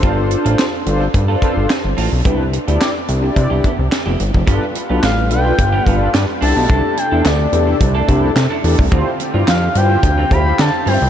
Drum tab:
HH |x-xxx-x-x-x-x-o-|x-xxx-x-x-x-x-x-|x-x-x-x-x-x-x-o-|x-x-x-x-x-x-x-o-|
CP |----x-------x---|----x-------x---|----x-------x---|----x-------x---|
SD |----o-------o---|----o-------o---|----o-------o---|----o-------o---|
BD |o-------o-o-----|o-------o-o----o|o-------o-o-----|o-------o-o----o|

HH |x-x-x-x-x-x-x-o-|
CP |----x-------x---|
SD |----o-------o---|
BD |o-------o-o-----|